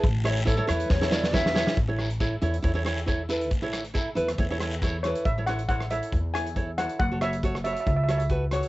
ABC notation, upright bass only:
X:1
M:4/4
L:1/8
Q:"Swing 16ths" 1/4=138
K:A
V:1 name="Upright bass" clef=bass
A,,,3 E,, E,,4 | A,,,3 E,, E,,4 | A,,,3 E,, E,,4 | A,,,4 E,,4 |
F,,,4 C,,4 |]